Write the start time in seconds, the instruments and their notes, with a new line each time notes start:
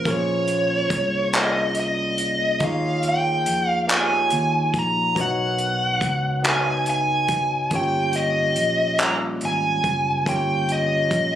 Already playing: tine electric piano A#3 C#4 F4 G#4 C5
0.05 fingered electric bass A#1, tine electric piano A#3 C#4 F4 G#4 C#5, kick, closed hi-hat
0.10 lead electric guitar C#5
0.48 closed hi-hat
0.90 fingered electric bass C2, kick, closed hi-hat
1.33 tine electric piano A#3 C#4 F4 G#4 D5, clap, closed hi-hat
1.37 lead electric guitar D#5
1.43 tine electric piano D#5
1.75 closed hi-hat
1.80 lead electric guitar D#5
2.18 closed hi-hat
2.60 fingered electric bass D#2, tine electric piano A#3 D#4 F4 G#4 C#5, lead electric guitar F5, kick, closed hi-hat
3.03 closed hi-hat
3.09 lead electric guitar G5
3.46 fingered electric bass F2, closed hi-hat
3.70 lead electric guitar F5
3.87 tine electric piano A#3 D#4 F4 G4 C#5, clap, closed hi-hat
3.93 tine electric piano G#4, lead electric guitar G#5
4.30 fingered electric bass D#2, closed hi-hat
4.74 fingered electric bass A#1, kick, closed hi-hat
4.79 lead electric guitar A#5
5.15 fingered electric bass B1, tine electric piano B3 C#4 F#4 A#4 C#5, kick, closed hi-hat
5.21 tine electric piano D#4, lead electric guitar F#5
5.58 closed hi-hat
6.01 fingered electric bass C#2, kick, closed hi-hat
6.42 tine electric piano B3 D#4 F#4 A#4 C#5, clap, closed hi-hat
6.49 tine electric piano D#5, lead electric guitar G#5
6.86 closed hi-hat
6.90 lead electric guitar G#5
7.28 kick, closed hi-hat
7.71 fingered electric bass G1, tine electric piano A#3 C#4 F4 G4 C#5, kick, closed hi-hat
7.76 lead electric guitar G5
8.13 lead electric guitar D#5, closed hi-hat
8.56 fingered electric bass A#1, closed hi-hat
8.99 tine electric piano G3 A#3 C#4 F4 A#4, lead electric guitar A#5, clap, closed hi-hat
9.41 fingered electric bass G#1, closed hi-hat
9.45 lead electric guitar G#5
9.84 fingered electric bass F#1, kick, closed hi-hat
10.26 fingered electric bass G1, tine electric piano A#3 C#4 F4 G4 C#5, lead electric guitar G5, kick, closed hi-hat
10.69 lead electric guitar D#5, closed hi-hat
11.11 fingered electric bass A#1, kick, closed hi-hat